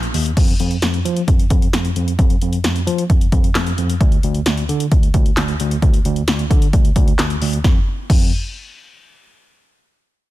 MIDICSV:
0, 0, Header, 1, 3, 480
1, 0, Start_track
1, 0, Tempo, 454545
1, 391, Time_signature, 4, 2, 24, 8
1, 10879, End_track
2, 0, Start_track
2, 0, Title_t, "Tine electric piano"
2, 0, Program_c, 0, 4
2, 148, Note_on_c, 0, 39, 98
2, 317, Note_off_c, 0, 39, 0
2, 389, Note_on_c, 0, 41, 111
2, 558, Note_off_c, 0, 41, 0
2, 629, Note_on_c, 0, 41, 104
2, 798, Note_off_c, 0, 41, 0
2, 870, Note_on_c, 0, 41, 96
2, 1038, Note_off_c, 0, 41, 0
2, 1110, Note_on_c, 0, 53, 95
2, 1278, Note_off_c, 0, 53, 0
2, 1351, Note_on_c, 0, 41, 101
2, 1519, Note_off_c, 0, 41, 0
2, 1588, Note_on_c, 0, 41, 108
2, 1757, Note_off_c, 0, 41, 0
2, 1830, Note_on_c, 0, 41, 96
2, 1998, Note_off_c, 0, 41, 0
2, 2070, Note_on_c, 0, 41, 99
2, 2238, Note_off_c, 0, 41, 0
2, 2310, Note_on_c, 0, 41, 109
2, 2478, Note_off_c, 0, 41, 0
2, 2550, Note_on_c, 0, 41, 99
2, 2718, Note_off_c, 0, 41, 0
2, 2791, Note_on_c, 0, 41, 92
2, 2959, Note_off_c, 0, 41, 0
2, 3030, Note_on_c, 0, 53, 112
2, 3198, Note_off_c, 0, 53, 0
2, 3271, Note_on_c, 0, 41, 93
2, 3439, Note_off_c, 0, 41, 0
2, 3509, Note_on_c, 0, 41, 107
2, 3677, Note_off_c, 0, 41, 0
2, 3751, Note_on_c, 0, 41, 101
2, 3919, Note_off_c, 0, 41, 0
2, 3992, Note_on_c, 0, 41, 96
2, 4159, Note_off_c, 0, 41, 0
2, 4231, Note_on_c, 0, 38, 107
2, 4399, Note_off_c, 0, 38, 0
2, 4472, Note_on_c, 0, 38, 102
2, 4639, Note_off_c, 0, 38, 0
2, 4712, Note_on_c, 0, 38, 100
2, 4880, Note_off_c, 0, 38, 0
2, 4952, Note_on_c, 0, 50, 104
2, 5119, Note_off_c, 0, 50, 0
2, 5192, Note_on_c, 0, 38, 97
2, 5359, Note_off_c, 0, 38, 0
2, 5429, Note_on_c, 0, 38, 106
2, 5597, Note_off_c, 0, 38, 0
2, 5671, Note_on_c, 0, 38, 102
2, 5839, Note_off_c, 0, 38, 0
2, 5912, Note_on_c, 0, 38, 101
2, 6079, Note_off_c, 0, 38, 0
2, 6150, Note_on_c, 0, 38, 107
2, 6318, Note_off_c, 0, 38, 0
2, 6392, Note_on_c, 0, 38, 105
2, 6559, Note_off_c, 0, 38, 0
2, 6632, Note_on_c, 0, 38, 101
2, 6799, Note_off_c, 0, 38, 0
2, 6870, Note_on_c, 0, 50, 106
2, 7038, Note_off_c, 0, 50, 0
2, 7110, Note_on_c, 0, 38, 102
2, 7278, Note_off_c, 0, 38, 0
2, 7349, Note_on_c, 0, 38, 113
2, 7517, Note_off_c, 0, 38, 0
2, 7592, Note_on_c, 0, 38, 100
2, 7759, Note_off_c, 0, 38, 0
2, 7832, Note_on_c, 0, 38, 96
2, 7999, Note_off_c, 0, 38, 0
2, 8071, Note_on_c, 0, 41, 100
2, 8205, Note_off_c, 0, 41, 0
2, 8551, Note_on_c, 0, 41, 99
2, 8774, Note_off_c, 0, 41, 0
2, 10879, End_track
3, 0, Start_track
3, 0, Title_t, "Drums"
3, 30, Note_on_c, 9, 42, 56
3, 136, Note_off_c, 9, 42, 0
3, 150, Note_on_c, 9, 46, 78
3, 256, Note_off_c, 9, 46, 0
3, 273, Note_on_c, 9, 42, 54
3, 378, Note_off_c, 9, 42, 0
3, 389, Note_on_c, 9, 36, 105
3, 390, Note_on_c, 9, 42, 67
3, 390, Note_on_c, 9, 49, 91
3, 495, Note_off_c, 9, 36, 0
3, 495, Note_off_c, 9, 42, 0
3, 495, Note_off_c, 9, 49, 0
3, 509, Note_on_c, 9, 42, 52
3, 614, Note_off_c, 9, 42, 0
3, 630, Note_on_c, 9, 42, 67
3, 736, Note_off_c, 9, 42, 0
3, 747, Note_on_c, 9, 42, 47
3, 853, Note_off_c, 9, 42, 0
3, 868, Note_on_c, 9, 42, 78
3, 870, Note_on_c, 9, 38, 122
3, 973, Note_off_c, 9, 42, 0
3, 975, Note_off_c, 9, 38, 0
3, 990, Note_on_c, 9, 42, 50
3, 1096, Note_off_c, 9, 42, 0
3, 1114, Note_on_c, 9, 42, 71
3, 1219, Note_off_c, 9, 42, 0
3, 1230, Note_on_c, 9, 42, 58
3, 1336, Note_off_c, 9, 42, 0
3, 1350, Note_on_c, 9, 42, 73
3, 1351, Note_on_c, 9, 36, 97
3, 1455, Note_off_c, 9, 42, 0
3, 1456, Note_off_c, 9, 36, 0
3, 1472, Note_on_c, 9, 42, 58
3, 1577, Note_off_c, 9, 42, 0
3, 1588, Note_on_c, 9, 42, 83
3, 1589, Note_on_c, 9, 36, 88
3, 1693, Note_off_c, 9, 42, 0
3, 1694, Note_off_c, 9, 36, 0
3, 1714, Note_on_c, 9, 42, 53
3, 1819, Note_off_c, 9, 42, 0
3, 1831, Note_on_c, 9, 38, 114
3, 1834, Note_on_c, 9, 42, 67
3, 1936, Note_off_c, 9, 38, 0
3, 1939, Note_off_c, 9, 42, 0
3, 1951, Note_on_c, 9, 42, 56
3, 2056, Note_off_c, 9, 42, 0
3, 2070, Note_on_c, 9, 42, 75
3, 2176, Note_off_c, 9, 42, 0
3, 2194, Note_on_c, 9, 42, 53
3, 2300, Note_off_c, 9, 42, 0
3, 2310, Note_on_c, 9, 36, 106
3, 2310, Note_on_c, 9, 42, 67
3, 2416, Note_off_c, 9, 36, 0
3, 2416, Note_off_c, 9, 42, 0
3, 2429, Note_on_c, 9, 42, 55
3, 2535, Note_off_c, 9, 42, 0
3, 2550, Note_on_c, 9, 42, 66
3, 2656, Note_off_c, 9, 42, 0
3, 2668, Note_on_c, 9, 42, 49
3, 2773, Note_off_c, 9, 42, 0
3, 2789, Note_on_c, 9, 42, 75
3, 2791, Note_on_c, 9, 38, 117
3, 2895, Note_off_c, 9, 42, 0
3, 2896, Note_off_c, 9, 38, 0
3, 2911, Note_on_c, 9, 42, 53
3, 3017, Note_off_c, 9, 42, 0
3, 3034, Note_on_c, 9, 42, 74
3, 3140, Note_off_c, 9, 42, 0
3, 3152, Note_on_c, 9, 42, 59
3, 3257, Note_off_c, 9, 42, 0
3, 3271, Note_on_c, 9, 36, 96
3, 3271, Note_on_c, 9, 42, 72
3, 3376, Note_off_c, 9, 42, 0
3, 3377, Note_off_c, 9, 36, 0
3, 3392, Note_on_c, 9, 42, 60
3, 3498, Note_off_c, 9, 42, 0
3, 3508, Note_on_c, 9, 42, 84
3, 3509, Note_on_c, 9, 36, 90
3, 3614, Note_off_c, 9, 42, 0
3, 3615, Note_off_c, 9, 36, 0
3, 3633, Note_on_c, 9, 42, 51
3, 3738, Note_off_c, 9, 42, 0
3, 3750, Note_on_c, 9, 38, 115
3, 3750, Note_on_c, 9, 39, 95
3, 3753, Note_on_c, 9, 42, 67
3, 3856, Note_off_c, 9, 38, 0
3, 3856, Note_off_c, 9, 39, 0
3, 3859, Note_off_c, 9, 42, 0
3, 3871, Note_on_c, 9, 42, 57
3, 3977, Note_off_c, 9, 42, 0
3, 3991, Note_on_c, 9, 42, 76
3, 4097, Note_off_c, 9, 42, 0
3, 4114, Note_on_c, 9, 42, 55
3, 4219, Note_off_c, 9, 42, 0
3, 4231, Note_on_c, 9, 36, 105
3, 4231, Note_on_c, 9, 42, 66
3, 4336, Note_off_c, 9, 36, 0
3, 4337, Note_off_c, 9, 42, 0
3, 4349, Note_on_c, 9, 42, 54
3, 4455, Note_off_c, 9, 42, 0
3, 4470, Note_on_c, 9, 42, 66
3, 4576, Note_off_c, 9, 42, 0
3, 4589, Note_on_c, 9, 42, 50
3, 4694, Note_off_c, 9, 42, 0
3, 4708, Note_on_c, 9, 42, 80
3, 4710, Note_on_c, 9, 38, 121
3, 4814, Note_off_c, 9, 42, 0
3, 4816, Note_off_c, 9, 38, 0
3, 4831, Note_on_c, 9, 42, 53
3, 4937, Note_off_c, 9, 42, 0
3, 4955, Note_on_c, 9, 42, 72
3, 5060, Note_off_c, 9, 42, 0
3, 5071, Note_on_c, 9, 42, 57
3, 5177, Note_off_c, 9, 42, 0
3, 5191, Note_on_c, 9, 36, 99
3, 5191, Note_on_c, 9, 42, 73
3, 5296, Note_off_c, 9, 42, 0
3, 5297, Note_off_c, 9, 36, 0
3, 5312, Note_on_c, 9, 42, 60
3, 5418, Note_off_c, 9, 42, 0
3, 5428, Note_on_c, 9, 42, 80
3, 5429, Note_on_c, 9, 36, 90
3, 5533, Note_off_c, 9, 42, 0
3, 5534, Note_off_c, 9, 36, 0
3, 5552, Note_on_c, 9, 42, 54
3, 5658, Note_off_c, 9, 42, 0
3, 5670, Note_on_c, 9, 38, 116
3, 5670, Note_on_c, 9, 39, 97
3, 5673, Note_on_c, 9, 42, 65
3, 5775, Note_off_c, 9, 38, 0
3, 5775, Note_off_c, 9, 39, 0
3, 5778, Note_off_c, 9, 42, 0
3, 5790, Note_on_c, 9, 42, 55
3, 5896, Note_off_c, 9, 42, 0
3, 5911, Note_on_c, 9, 42, 78
3, 6016, Note_off_c, 9, 42, 0
3, 6033, Note_on_c, 9, 42, 54
3, 6139, Note_off_c, 9, 42, 0
3, 6150, Note_on_c, 9, 36, 106
3, 6150, Note_on_c, 9, 42, 66
3, 6255, Note_off_c, 9, 36, 0
3, 6255, Note_off_c, 9, 42, 0
3, 6268, Note_on_c, 9, 42, 55
3, 6374, Note_off_c, 9, 42, 0
3, 6390, Note_on_c, 9, 42, 67
3, 6495, Note_off_c, 9, 42, 0
3, 6507, Note_on_c, 9, 42, 50
3, 6613, Note_off_c, 9, 42, 0
3, 6628, Note_on_c, 9, 42, 77
3, 6630, Note_on_c, 9, 38, 116
3, 6733, Note_off_c, 9, 42, 0
3, 6735, Note_off_c, 9, 38, 0
3, 6749, Note_on_c, 9, 42, 53
3, 6855, Note_off_c, 9, 42, 0
3, 6870, Note_on_c, 9, 36, 88
3, 6872, Note_on_c, 9, 42, 74
3, 6976, Note_off_c, 9, 36, 0
3, 6978, Note_off_c, 9, 42, 0
3, 6990, Note_on_c, 9, 42, 60
3, 7096, Note_off_c, 9, 42, 0
3, 7110, Note_on_c, 9, 42, 74
3, 7111, Note_on_c, 9, 36, 103
3, 7215, Note_off_c, 9, 42, 0
3, 7216, Note_off_c, 9, 36, 0
3, 7231, Note_on_c, 9, 42, 59
3, 7336, Note_off_c, 9, 42, 0
3, 7348, Note_on_c, 9, 42, 83
3, 7349, Note_on_c, 9, 36, 93
3, 7453, Note_off_c, 9, 42, 0
3, 7454, Note_off_c, 9, 36, 0
3, 7472, Note_on_c, 9, 42, 51
3, 7578, Note_off_c, 9, 42, 0
3, 7591, Note_on_c, 9, 38, 123
3, 7591, Note_on_c, 9, 39, 100
3, 7594, Note_on_c, 9, 42, 65
3, 7696, Note_off_c, 9, 38, 0
3, 7696, Note_off_c, 9, 39, 0
3, 7699, Note_off_c, 9, 42, 0
3, 7711, Note_on_c, 9, 42, 56
3, 7817, Note_off_c, 9, 42, 0
3, 7832, Note_on_c, 9, 46, 80
3, 7937, Note_off_c, 9, 46, 0
3, 7955, Note_on_c, 9, 42, 54
3, 8061, Note_off_c, 9, 42, 0
3, 8072, Note_on_c, 9, 36, 104
3, 8073, Note_on_c, 9, 38, 83
3, 8177, Note_off_c, 9, 36, 0
3, 8178, Note_off_c, 9, 38, 0
3, 8551, Note_on_c, 9, 36, 108
3, 8552, Note_on_c, 9, 49, 88
3, 8657, Note_off_c, 9, 36, 0
3, 8658, Note_off_c, 9, 49, 0
3, 10879, End_track
0, 0, End_of_file